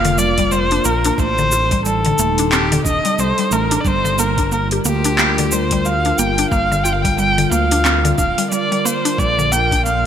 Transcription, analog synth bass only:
Already playing: F1
0.85 A#1
1.18 A1
2.18 D#1
2.85 D#1
3.18 C2
3.51 A1
3.85 G1
4.85 D2
6.18 G1
6.51 G1
7.51 D2
8.18 D1
9.18 A#1

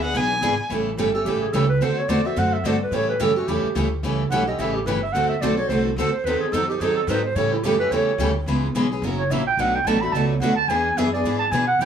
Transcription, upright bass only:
Already playing: D2
0.14 B1
0.42 G#1
0.58 muted upright bass stroke
0.69 A1
0.97 G1
1.25 A1
1.53 C#2
1.81 D2
2.08 E2
2.36 F#2
2.64 G2
2.91 A2
3.20 F#2
3.47 E2
3.63 muted upright bass stroke
3.75 D2
4.03 C#2
4.30 B1
4.58 A1
4.86 G1
5.13 D2
5.42 B1
5.69 C2
5.96 D2
6.12 muted upright bass stroke
6.24 D#2
6.41 muted upright bass stroke
6.52 F2
6.80 F#2
6.96 muted upright bass stroke
7.07 G#2
7.35 A2
7.63 F#2
7.91 E2
8.18 D2
8.46 C#2
8.75 B1
9.02 F#1
9.30 A#1
9.57 B1
9.84 A1
10.12 C#2
10.40 D2
10.68 E2
10.97 F#2
11.24 G#2
11.52 B2
11.79 A2

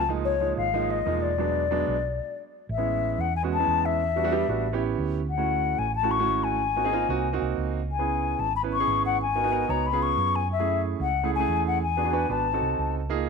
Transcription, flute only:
0.25 C#5
0.57 F5
0.91 D#5
1.22 D5
2.72 E5
3.21 F#5
3.36 G#5
3.54 A5
3.86 E5
5.30 F#5
5.79 G#5
5.96 A5
6.11 C#6
6.44 G#5
7.92 G#5
8.40 A5
8.56 B5
8.73 C#6
9.06 F#5
9.22 G#5
9.70 A#5
9.87 B5
10.02 C#6
10.36 G#5
10.52 E5
11.02 F#5
11.35 G#5
11.68 F#5
11.83 G#5
12.32 A5

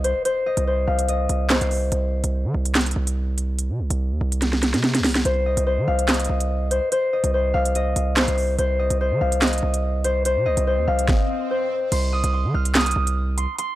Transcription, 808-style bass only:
Already playing: C2
0.57 C2
0.88 C2
1.29 C2
1.61 C2
1.92 C2
2.24 C2
2.45 D#3
2.54 C2
2.96 C2
3.70 C3
3.79 C2
3.90 C2
4.11 D#2
4.21 C2
4.74 C3
5.00 C2
5.25 C2
5.57 C2
5.78 D#3
5.88 C2
6.29 C2
7.24 C2
7.54 C2
7.96 C2
8.28 C2
8.59 C2
8.90 C2
9.11 D#3
9.21 C2
9.63 C2
10.36 C3
10.46 C2
10.57 C2
10.78 D#2
10.88 C2
11.92 C2
12.24 C2
12.45 D#3
12.54 C2
12.96 C2

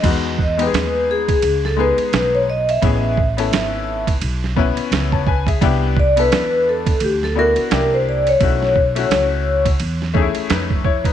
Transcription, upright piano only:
0.02 G#3 B3 D#4 F#4
0.57 G#3 B3 D#4 G4
0.67 G#4
1.77 G#3 B3 D#4 G#4
2.82 B3 C#4 E4 G#4
3.37 B3 C#4 E4 A4
4.56 B3 C#4 E4 B4
5.13 C#5 A5
5.27 B4 G#5
5.48 G#4 E5
5.61 B3 D4 E4 G4
6.16 B3 D4 E4 A4
7.35 B3 D4 E4 F#4
7.70 A#3 D4 E4 G4
8.40 A3 C#4 E4 F#4
8.95 A3 C#4 E4 F#4
10.14 A3 C#4 D#4 G#4
10.22 E4
10.50 D#4 B4
10.85 E4 C#5
11.05 D#4 B4

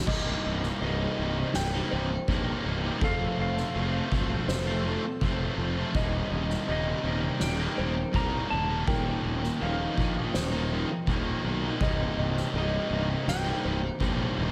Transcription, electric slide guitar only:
0.82 D#5
1.56 G5
3.04 F5
3.42 F5
6.72 D#5
7.43 G5
8.16 A#5
8.50 A5
8.88 G5
9.62 F5
12.58 D#5
13.29 G5

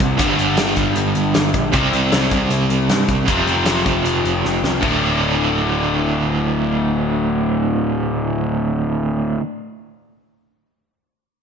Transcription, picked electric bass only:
0.00 C2
0.19 G1
0.38 G1
0.58 G1
0.77 G1
0.97 G1
1.16 G1
1.36 G1
1.55 A#1
1.74 C2
1.93 C2
2.12 C2
2.32 C2
2.50 C2
2.70 C2
2.89 G2
3.09 C2
3.28 F1
3.47 F1
3.68 F1
3.86 F1
4.05 F1
4.25 F1
4.45 F1
4.63 C2
4.83 D1

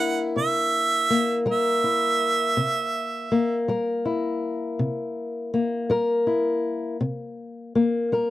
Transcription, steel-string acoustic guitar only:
Already playing: A#3 E4 A#4
0.36 C3
1.10 A#3
1.46 G3 A#4
1.84 E4
2.57 C3
3.32 A#3
3.68 G3 A#4
4.05 E4
4.79 C3
5.54 A#3
5.90 G3 A#4
6.27 E4
7.01 C3
7.75 A#3
8.12 G3 A#4

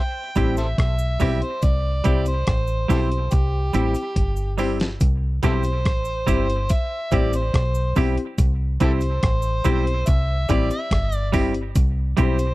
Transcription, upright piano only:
0.36 C4 E4 G4
1.20 C4 E4 G4
2.05 C4 E4 G4
2.89 C4 E4 G4
3.74 C4 E4 G4
4.58 C4 E4 G4
5.43 C4 E4 G4
6.27 C4 E4 G4
7.12 C4 E4 G4
7.96 C4 E4 G4
8.80 C4 E4 G4
9.64 C4 E4 G4
10.49 C4 E4 G4
11.33 C4 E4 G4
12.17 C4 E4 G4

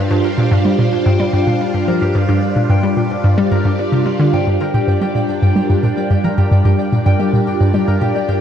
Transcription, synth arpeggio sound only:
0.11 G2
0.38 A#2
0.51 G2
0.65 G3
0.79 A#2
1.06 G2
1.20 G3
1.33 G2
1.47 A#2
1.74 G2
1.88 F3
2.01 G2
2.15 G2
2.29 G2
2.56 A#2
2.70 G2
2.83 G3
2.97 A#2
3.24 G2
3.38 G3
3.51 G2
3.65 G2
3.92 C3
4.06 G3
4.19 D3
4.33 G2
4.47 G2
4.74 A#2
4.88 G2
5.01 G3
5.15 A#2
5.42 G2
5.56 G3
5.69 G2
5.83 A#2
6.10 G2
6.24 F3
6.38 G2
6.51 G2
6.65 G2
6.92 A#2
7.06 G2
7.20 G3
7.33 A#2
7.60 G2
7.74 G3
7.88 G2
8.01 A#2
8.29 G2

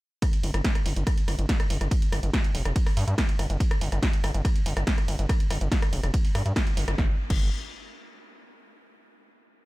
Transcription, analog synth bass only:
0.43 G1
0.54 G1
0.86 G1
0.96 G1
1.28 G1
1.39 G1
1.70 G1
1.81 G1
2.12 G1
2.23 G1
2.55 F1
2.65 F1
2.97 G2
3.07 G2
3.39 G1
3.50 G1
3.81 G1
3.92 G1
4.24 G1
4.34 G1
4.66 G1
4.77 G1
5.08 G1
5.19 G1
5.51 G1
5.61 G1
5.93 F1
6.03 F1
6.35 G2
6.46 G2
6.77 G1
6.88 G1
6.98 G1
7.30 G1

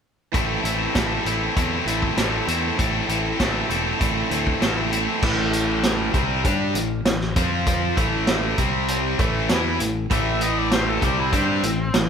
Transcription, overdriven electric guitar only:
0.32 A2 E3 A3 C4 E4 A4
0.63 A2 E3 A3 C4 E4 A4
0.94 A2 E3 A3 C4 E4 A4
1.24 A2 E3 A3 C4 E4 A4
1.55 A2 E3 A3 C4 E4 A4
1.86 A2 E3 A3 C4 E4 A4
2.16 A2 E3 A3 C4 E4 A4
2.46 A2 E3 A3 C4 E4 A4
2.77 A2 E3 A3 C4 E4 A4
3.07 A2 E3 A3 C4 E4 A4
3.39 A2 E3 A3 C4 E4 A4
3.68 A2 E3 A3 C4 E4 A4
3.99 A2 E3 A3 C4 E4 A4
4.30 A2 E3 A3 C4 E4 A4
4.60 A2 E3 A3 C4 E4 A4
4.91 A2 E3 A3 C4 E4 A4
5.22 A2 E3 A3
6.13 C3 G3 C4
6.44 G3 D4 G4
6.75 A2 E3
7.06 A2 E3
7.37 F3 C4 F4
7.97 A2 E3 A3
8.58 C3 G3 C4
9.19 A2 E3 A3
9.50 E3 B3 E4
9.80 A2 E3
10.10 A2 E3 A3
11.02 C3 G3 C4
11.33 G3 D4 G4
11.64 A2 E3
11.94 A2 E3

